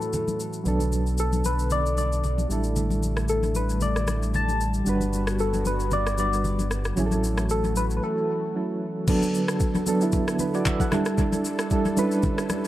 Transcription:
Already playing: A2 E3 F#3 A3 C#4 E4 F#4 A4
0.02 shaker
0.13 low conga, shaker
0.28 high conga, shaker
0.40 shaker
0.53 shaker
0.64 B1 D3 F#3 B3 D4 A4, low conga, shaker
0.68 A4
0.80 high conga, shaker
0.92 high conga, shaker
1.06 shaker
1.18 A4, shaker
1.33 high conga, shaker
1.45 B4, high conga, shaker
1.59 shaker
1.70 D5, low conga, shaker
1.86 shaker
1.97 D5, high conga, shaker
2.12 shaker
2.24 low conga, shaker
2.38 high conga, shaker
2.48 A1 G3 A3 D4 E4, shaker
2.53 A4
2.64 shaker
2.76 low conga, shaker
2.90 high conga, shaker
3.03 high conga, shaker
3.17 cross-stick, shaker
3.28 A4, shaker
3.43 high conga, shaker
3.55 B4, high conga, shaker
3.69 shaker
3.81 D5, low conga, shaker
3.96 cross-stick, shaker
4.07 cross-stick, high conga, shaker
4.23 shaker
4.34 A5, low conga, shaker
4.48 high conga, shaker
4.61 shaker
4.74 shaker
4.85 G1 G3 B3 D4 F#4, low conga, shaker
4.89 B4
5.01 high conga, shaker
5.13 high conga, shaker
5.27 cross-stick, shaker
5.39 A4, shaker
5.54 high conga, shaker
5.65 B4, high conga, shaker
5.80 shaker
5.91 D5, low conga, shaker
6.07 cross-stick, shaker
6.18 G3 D4 F#4 B4 D5, high conga, shaker
6.33 shaker
6.44 low conga, shaker
6.59 high conga, shaker
6.71 cross-stick, shaker
6.85 cross-stick, shaker
6.96 A1 E3 F#3 A3 C#4 E4 F#4, low conga, shaker
7.00 G#4
7.06 A4
7.11 high conga, shaker
7.23 high conga, shaker
7.38 cross-stick, shaker
7.49 A4, shaker
7.64 high conga, shaker
7.76 B4, high conga, shaker
7.90 shaker
7.97 B4
8.04 A4
8.55 F#3 C#4 E4 A4
9.07 D3 F#3 B3 D4 A4, kick, crash, low conga, shaker
9.22 high conga, shaker
9.35 shaker
9.48 cross-stick, shaker
9.60 kick, shaker
9.75 high conga, shaker
9.86 F#3 B3 D4 A4, high conga, shaker
10.01 F#3 B3 D4 E4, shaker
10.12 kick, low conga, shaker
10.28 cross-stick, shaker
10.39 D4 B4, high conga, shaker
10.54 F#4 D5, shaker
10.66 E5, kick, clap, low conga, shaker
10.80 A4 F#5, kick, high conga, shaker
10.92 G3 D4 E4 A4, cross-stick, low conga, shaker
11.05 cross-stick, shaker
11.18 kick, low conga, shaker
11.32 high conga, shaker
11.45 shaker
11.59 cross-stick, shaker
11.70 G3 D4 E4 A4, kick, shaker
11.85 high conga, shaker
11.97 G3 C#4 E4 B4, high conga, shaker
12.04 D4
12.11 shaker
12.23 kick, low conga, shaker
12.38 cross-stick, shaker
12.49 cross-stick, high conga, shaker

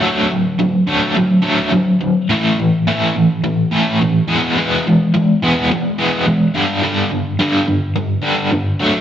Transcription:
0.02 D3 F#3 A3
0.31 D3 F#3
0.59 D3 F#3
0.87 D3 F#3 A3
1.16 D3 F#3
1.43 D3 F#3 A3
1.72 D3 F#3
2.01 D3 F#3
2.29 A2 E3 A3
2.59 A2 E3
2.87 A2 E3 A3
3.15 A2 E3
3.44 A2 E3
3.71 A2 E3 A3
4.02 A2 E3
4.28 E3 G#3 B3
4.57 E3 G#3 B3
4.87 E3 G#3
5.14 E3 G#3
5.42 E3 G#3 B3
5.71 E3 G#3
5.98 E3 G#3 B3
6.26 E3 G#3
6.54 G2 D3 G3
6.82 G2 D3 G3
7.11 G2 D3
7.39 G2 D3 G3
7.67 G2 D3
7.96 G2 D3
8.22 G2 D3 G3
8.52 G2 D3
8.80 D3 F#3 A3

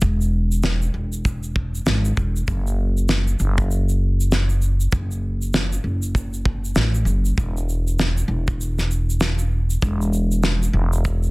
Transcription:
0.01 E1, kick, shaker
0.21 shaker
0.52 shaker
0.63 snare, shaker
0.82 shaker
0.94 E1
1.12 shaker
1.25 kick, shaker
1.43 shaker
1.56 kick
1.75 shaker
1.86 G#1, snare, shaker
2.05 shaker
2.17 E1, kick, shaker
2.36 shaker
2.48 F#1, kick, shaker
2.67 shaker
2.97 shaker
3.09 snare, shaker
3.27 shaker
3.39 F#1, shaker
3.58 kick, shaker
3.71 shaker
3.89 shaker
4.21 shaker
4.32 snare, shaker
4.49 shaker
4.62 shaker
4.80 shaker
4.92 F#1, kick, shaker
5.11 shaker
5.42 shaker
5.54 snare, shaker
5.72 shaker
5.84 F#1
6.02 shaker
6.15 kick, shaker
6.33 shaker
6.45 kick
6.65 shaker
6.75 A1, snare, shaker
6.94 shaker
7.05 F#1, shaker
7.25 shaker
7.38 E1, kick, shaker
7.57 shaker
7.69 shaker
7.87 shaker
7.99 snare, shaker
8.17 shaker
8.28 E1
8.48 kick, shaker
8.61 shaker
8.79 snare, shaker
8.91 shaker
9.10 shaker
9.20 snare, shaker
9.38 shaker
9.70 shaker
9.82 E1, kick, shaker
10.01 shaker
10.13 shaker
10.32 shaker
10.43 snare, shaker
10.63 shaker
10.73 E1
10.93 shaker
11.05 kick, shaker
11.23 shaker

